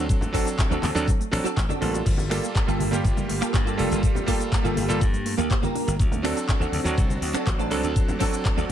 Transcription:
Already playing: F#3 C4 D4 A4
0.09 F#3, kick, closed hi-hat, shaker
0.21 A3, closed hi-hat, low conga, shaker
0.32 F#3 C4 D4 F#4 A4, kick, open hi-hat
0.46 D4, closed hi-hat, shaker
0.58 A3, muted clean electric guitar stroke, kick, clap, closed hi-hat, shaker
0.70 D2 C4 D4 F#4 A4, closed hi-hat, shaker
0.82 D2 C4, clap, open hi-hat, high conga, low conga
0.95 D2 F#3 C4 D4 A4, closed hi-hat, shaker
1.07 F#3, kick, closed hi-hat, shaker
1.20 A3, closed hi-hat, shaker
1.31 A1 F#3 C4 D4 A4, finger snap, open hi-hat
1.44 C4 D4 F#4 A4, muted slap bass stroke, closed hi-hat, shaker
1.56 A1 C4, kick, clap, closed hi-hat, shaker
1.69 C4 D4 F#4 A4, closed hi-hat, high conga, shaker
1.81 A1 G3 A#3 C4 F4 A4, open hi-hat, high conga
1.93 F#4, closed hi-hat, shaker
2.05 G1 F3 A#3 G4 F5 A5, kick, closed hi-hat, crash, shaker
2.18 G3, closed hi-hat, low conga, shaker
2.29 G3 A3 A#3 F4 G4 A4, finger snap, open hi-hat
2.43 A#3, closed hi-hat, shaker
2.55 G3, muted clean electric guitar stroke, kick, clap, closed hi-hat, shaker
2.67 G1 A#3 F4 G4 A4, closed hi-hat, shaker
2.79 G1 A3, open hi-hat, high conga
2.91 G1 G3 A#3 F4 G4, closed hi-hat, shaker
3.04 F1 F3, kick, closed hi-hat, shaker
3.16 G3, closed hi-hat, high conga, shaker
3.28 G1 A3, open hi-hat
3.41 A#3 F4 G4 A4, finger snap, closed hi-hat, shaker
3.53 G2 F3, kick, clap, closed hi-hat, shaker
3.65 G3 A#3 F4 G4 A4, closed hi-hat, shaker
3.77 F1 G3 A#3 D4 F4 A4, open hi-hat
3.90 G1 A#3, closed hi-hat, shaker
4.03 F3, kick, closed hi-hat, shaker
4.15 G3, closed hi-hat, low conga, shaker
4.26 G3 A3 A#3 F4 G4 A4, kick, open hi-hat
4.40 A#3, closed hi-hat, shaker
4.51 G3, muted clean electric guitar stroke, kick, clap, closed hi-hat, shaker
4.64 G1 A#3 F4 G4 A4, closed hi-hat, shaker
4.76 G1 A3, open hi-hat, high conga
4.88 G1 G3 A#3 F4 A4, closed hi-hat, shaker
5.00 G2 F3, kick, closed hi-hat, shaker
5.13 G3, closed hi-hat, shaker
5.25 A3, open hi-hat
5.37 D2 A#3 F4 G4 A4, closed hi-hat, shaker
5.50 F3, kick, clap, closed hi-hat, shaker
5.62 G3 A#3 F4 G4 A#4, closed hi-hat, high conga, shaker
5.75 D4, open hi-hat, high conga
5.87 G1 A#3, closed hi-hat, shaker
5.99 D2 F#3 F#4 C5 D5 A5, kick, closed hi-hat, shaker
6.12 A3, closed hi-hat, low conga, shaker
6.23 F#3 C4 D4 F#4 A4, finger snap, open hi-hat
6.36 D4, closed hi-hat, shaker
6.49 A3, kick, clap, closed hi-hat, shaker
6.60 D2 C4 D4 F#4 A4, closed hi-hat, shaker
6.72 D2 C4, open hi-hat, high conga
6.84 D2 F#3 C4 D4 F#4, closed hi-hat, shaker
6.98 C2 F#3, kick, closed hi-hat, shaker
7.10 A3, closed hi-hat, high conga, shaker
7.22 D2 C4, open hi-hat
7.33 C4 D4 F#4 A4, finger snap, muted slap bass stroke, closed hi-hat, shaker
7.47 A1 F#3, kick, clap, closed hi-hat, shaker
7.58 A3 C4 D4 F#4 A4, closed hi-hat, shaker
7.70 C2 F#3 C4 D4 F#4 A4, open hi-hat
7.83 D2 D4, closed hi-hat, shaker
7.96 F#3, kick, closed hi-hat, shaker
8.08 A3, closed hi-hat, low conga, shaker
8.19 F#3 C4 D4 F#4 A4, kick, open hi-hat
8.33 D4, closed hi-hat, shaker
8.44 A3, muted clean electric guitar stroke, kick, clap, closed hi-hat, shaker
8.57 D2 C4 D4 F#4 A4, closed hi-hat, shaker

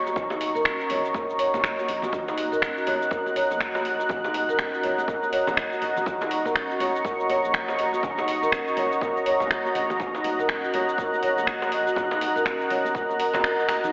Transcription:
Already playing: A#1 F#4 D#5 A#5 C#6
0.06 F#4, djembe tone, cabasa
0.16 kick, high conga, low conga, cabasa
0.30 D#4, djembe slap, djembe tone, cabasa
0.41 D#1, open hi-hat
0.55 A#4, mid tom, cabasa
0.65 finger snap, kick, djembe tone, cabasa
0.80 F#4, cabasa
0.90 C#2 C#5, open hi-hat, djembe tone, high conga
1.05 cabasa
1.14 A#4, kick, djembe tone, low conga, cabasa
1.29 D#1, cabasa
1.39 F#1 C#5, open hi-hat
1.54 D#2 A#3, djembe tone, low conga, cabasa
1.64 finger snap, kick, cabasa
1.78 F#4, djembe tone, cabasa
1.88 A#1, mid tom, open hi-hat
2.02 F#4, high conga, djembe tone, cabasa
2.12 D#1 F#6, kick, high conga, low conga, cabasa
2.27 D#4, djembe slap, cabasa
2.38 D#1, open hi-hat, djembe tone
2.52 A#4, mid tom, cabasa
2.62 finger snap, kick, djembe tone, cabasa
2.77 F#4, cabasa
2.87 C#2 C#5, open hi-hat, djembe tone, high conga
3.02 cabasa
3.11 A#4, kick, low conga, cabasa
3.26 djembe tone, cabasa
3.36 D#1 C#5, mid tom, open hi-hat
3.50 A#1 A#3, djembe tone, cabasa
3.60 finger snap, kick, cabasa
3.75 F#4, djembe slap, djembe tone, cabasa
3.85 open hi-hat
4.00 F#4, cabasa
4.09 kick, high conga, djembe tone, low conga, cabasa
4.24 D#4, djembe slap, cabasa
4.34 D#1, open hi-hat, djembe tone
4.49 A#4, mid tom, cabasa
4.59 C#4, finger snap, kick, djembe tone, cabasa
4.74 F#4, cabasa
4.83 C#2 C#5, open hi-hat, high conga
4.98 djembe tone, cabasa
5.08 A#4, kick, mid tom, low conga, cabasa
5.23 djembe tone, cabasa
5.33 C#5, open hi-hat
5.47 A#1 A#3, high conga, djembe tone, low conga, cabasa
5.57 finger snap, kick, cabasa
5.72 F#4, cabasa
5.82 mid tom, open hi-hat, djembe tone
5.97 F#4, high conga, cabasa
6.06 D#1 C#6, kick, high conga, low conga, cabasa
6.21 D#4, djembe slap, djembe tone, cabasa
6.31 D#1, open hi-hat
6.45 A#4, mid tom, djembe tone, cabasa
6.55 finger snap, kick, cabasa
6.70 F#4, cabasa
6.80 C#2 C#5, open hi-hat, djembe tone, high conga
6.96 cabasa
7.05 A#4, kick, djembe tone, low conga, cabasa
7.20 cabasa
7.29 D#1 C#5, mid tom, open hi-hat, djembe tone
7.44 A#1 A#3, cabasa
7.54 finger snap, kick, cabasa
7.68 F#4, djembe slap, djembe tone, cabasa
7.79 D#5, open hi-hat
7.93 F#4, djembe tone, cabasa
8.03 kick, high conga, low conga, cabasa
8.18 D#4, djembe slap, djembe tone, cabasa
8.28 D#1, open hi-hat
8.42 A#4, mid tom, cabasa
8.52 finger snap, kick, djembe tone, cabasa
8.67 F#4, cabasa
8.76 C#2 C#5, open hi-hat, djembe tone, high conga
8.92 cabasa
9.01 A#4, kick, djembe tone, low conga, cabasa
9.16 D#1, cabasa
9.26 F#1 C#5, open hi-hat
9.40 D#2 A#3, djembe tone, low conga, cabasa
9.51 finger snap, kick, cabasa
9.65 F#4, djembe tone, cabasa
9.75 A#1 D#5, mid tom, open hi-hat
9.90 F#4, djembe tone, high conga, cabasa
10.00 D#1 F#6, kick, high conga, low conga, cabasa
10.14 D#4, djembe slap, cabasa
10.24 D#1, open hi-hat, djembe tone
10.39 A#4, mid tom, cabasa
10.49 finger snap, kick, djembe tone, cabasa
10.64 F#4, cabasa
10.73 C#2 C#5, open hi-hat, djembe tone, high conga
10.89 cabasa
10.98 A#4, kick, low conga, cabasa
11.13 djembe tone, cabasa
11.23 D#1 C#5, mid tom, open hi-hat
11.37 A#1 A#3, djembe tone, cabasa
11.47 finger snap, kick, cabasa
11.62 F#4, djembe slap, djembe tone, cabasa
11.72 D#5, open hi-hat
11.87 F#4, cabasa
11.96 kick, djembe tone, high conga, low conga, cabasa
12.11 D#4, djembe slap, cabasa
12.21 D#1, open hi-hat, djembe tone
12.36 A#4, mid tom, cabasa
12.45 C#4, finger snap, kick, djembe tone, cabasa
12.60 F#4, cabasa
12.70 C#2 C#5, open hi-hat, high conga
12.85 djembe tone, cabasa
12.95 A#4, kick, mid tom, low conga, cabasa
13.09 djembe tone, cabasa
13.20 A#4, open hi-hat
13.34 A#1 F#4, djembe slap, djembe tone, high conga, low conga, cabasa
13.44 A#4, finger snap, cabasa
13.59 D#5, cabasa
13.68 finger snap, mid tom, open hi-hat, djembe tone
13.84 D#4, high conga, cabasa

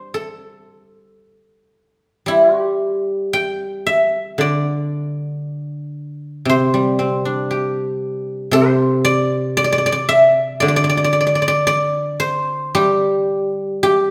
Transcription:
Already playing: G3 D4 C5 D5
0.14 A4
2.26 G3 E4
2.60 G4
3.33 G5
3.87 E5
4.38 D3 D5
6.45 C3
6.49 C5
6.74 G3
6.99 C4
7.25 D4
7.51 G4
8.51 C3 C5
9.05 D5
9.57 D5
9.64 D5
9.72 D5
9.78 D5
9.86 D5
9.92 D5
10.09 E5
10.60 D3 D5
10.68 D5
10.76 D5
10.84 D5
10.89 D5
10.97 D5
11.04 D5
11.13 D5
11.21 D5
11.27 D5
11.35 D5
11.42 D5
11.48 D5
11.67 D5
12.20 C5
12.75 G3 G4
13.83 G4

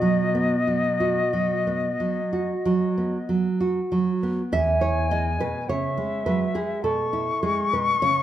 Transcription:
Already playing: B2 F#4 D#5
0.02 F#3
0.35 B3
0.67 F#3
1.00 F#4
1.33 F#3
1.67 B3
2.00 F#3
2.33 F#4
2.65 F#3
2.98 B3
3.29 F#3
3.60 F#4
3.92 F#3
4.23 B3
4.52 E2 E5 G#5
4.81 E4 C#5
5.11 G#3 D#5
5.40 B2 B4
5.69 C#3 C#5 E5
5.97 G#3
6.26 F#3 B4
6.55 G#3 G#4
6.83 B2 A4 C#6
7.13 E4
7.43 G#3 G#4
7.73 B2 B4
8.02 C#3 C#5

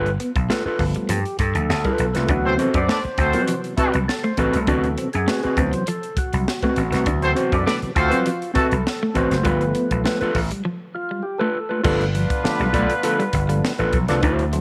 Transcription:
Already playing: G1 B4
0.06 muted clean electric guitar stroke, closed hi-hat
0.20 B3, closed hi-hat
0.36 B1, kick, closed hi-hat
0.50 A3 F4 A4 B4, snare
0.66 F4 A4 B4, muted slap bass stroke, muted clean electric guitar stroke
0.79 G1 F3 A3 B3, kick, open hi-hat
0.94 G3, closed hi-hat
1.09 G2 F3 G4, closed hi-hat
1.25 closed hi-hat
1.39 G2 A4, muted clean electric guitar stroke, kick, closed hi-hat
1.55 D2 F3, closed hi-hat
1.69 D2, snare
1.84 G3 F4 A4 B4, kick, closed hi-hat
1.98 B1, muted clean electric guitar stroke, closed hi-hat
2.14 C2 A3 F4 A4 B4, snare, closed hi-hat
2.28 D2 C3 E3 F#3 B3 D4 F#4, kick, closed hi-hat
2.45 C4 F#4 A4 C5, muted clean electric guitar stroke
2.57 C4 F#4 A4 C5, closed hi-hat
2.74 F#2 D4 A4 B4 C5 D5, kick, closed hi-hat
2.89 A3 D4 A4 B4 D5, snare
3.03 muted slap bass stroke, muted clean electric guitar stroke, closed hi-hat
3.18 D2 C4 F#4 A4 C5, kick, closed hi-hat
3.33 F#3 C4 F#4 B4, closed hi-hat
3.48 C3 E3 F3 F#3 B3, closed hi-hat
3.64 closed hi-hat
3.77 A3 C4 E4 F#4 A4 B4, muted slap bass stroke, muted clean electric guitar stroke, kick, closed hi-hat
3.94 C2 F#3, closed hi-hat
4.08 A4, snare
4.23 A3 C5, closed hi-hat
4.37 A1 C4 F#4 A4 B4, muted clean electric guitar stroke, kick, closed hi-hat
4.53 C2 A3, closed hi-hat
4.67 D2 C3 E3 F#3 B3 C4 D4 F#4 B4, kick, closed hi-hat
4.84 muted clean electric guitar stroke, closed hi-hat
4.98 C4, closed hi-hat
5.13 F#2 G#4, closed hi-hat
5.27 A3 C4 F#4 B4, snare
5.43 C4 F#4 B4, muted clean electric guitar stroke, muted slap bass stroke, closed hi-hat
5.57 D2 C3 E3 F#3 B3 C5, kick, closed hi-hat
5.73 F#3, closed hi-hat
5.87 F3 A4, closed hi-hat
6.03 closed hi-hat
6.17 F#4, muted slap bass stroke, muted clean electric guitar stroke, kick, closed hi-hat
6.33 C2 F#3, closed hi-hat
6.48 snare
6.62 A3 C4 F#4 B4, kick, closed hi-hat
6.76 A1, muted clean electric guitar stroke, closed hi-hat
6.92 C2 A3 C4 F#4 B4, snare, closed hi-hat
7.06 D2 C3 E3 F#3 B3 D4, kick, closed hi-hat
7.22 C4 F#4 A4 C5, muted clean electric guitar stroke, closed hi-hat
7.35 C4 F#4 C5, closed hi-hat
7.52 F#2 D4 A4 B4 D5, kick, closed hi-hat
7.65 A3 D4 A4 B4 D5, snare
7.82 muted slap bass stroke, muted clean electric guitar stroke, closed hi-hat
7.95 D2 C4 F4 F#4 A4 C5, kick, closed hi-hat
8.10 F#3 C4 F#4 B4, closed hi-hat
8.26 F3, closed hi-hat
8.42 closed hi-hat
8.54 A3 C4 E4 F#4 A4 B4, muted slap bass stroke, muted clean electric guitar stroke, kick, closed hi-hat
8.72 C2 F#3, closed hi-hat
8.87 snare
9.03 A3
9.14 A1 C4 F#4 B4 C5, muted clean electric guitar stroke, kick, closed hi-hat
9.31 F#1 A3, snare, closed hi-hat
9.43 G1 F3 G3 A3 B3 F4 A4 B4, kick, closed hi-hat
9.61 muted clean electric guitar stroke, closed hi-hat
9.75 B3, closed hi-hat
9.91 B1, kick, closed hi-hat
10.05 A3 F4 A4 B4, snare
10.21 F4 A4 B4, muted slap bass stroke, muted clean electric guitar stroke, closed hi-hat
10.35 A1, kick, open hi-hat
10.51 G3, closed hi-hat
10.65 F3
10.95 F4, muted clean electric guitar stroke
11.11 G3
11.23 G4
11.38 A3 F4 A4 B4
11.55 muted clean electric guitar stroke
11.69 A3 F4 A4 B4
11.83 G1 D3 F3 G3 A3 B3 D4 F4 A4 B4, kick, crash
12.01 muted clean electric guitar stroke, closed hi-hat
12.15 F3, closed hi-hat
12.30 kick, closed hi-hat
12.44 D3 F3 A3 D4, muted slap bass stroke, muted clean electric guitar stroke, snare
12.59 B1 G3, closed hi-hat
12.73 A3 F4 A4 D5, kick, closed hi-hat
12.90 closed hi-hat
13.03 D3 F3 A3 B3 F4 A4 B4, closed hi-hat
13.20 G3, closed hi-hat
13.33 G1, muted clean electric guitar stroke, kick, closed hi-hat
13.49 D3 F3 G3 A3 B3, closed hi-hat
13.65 snare
13.78 A1 F4 A4 B4, closed hi-hat
13.93 B1 F3, kick, closed hi-hat
14.08 C2 D3 F3 A3 D4 F4 A4 B4, snare, closed hi-hat
14.23 D2 D4 E4 F#4 C5, kick, closed hi-hat
14.39 muted clean electric guitar stroke, closed hi-hat
14.53 E3 F#3 A3 C4, closed hi-hat

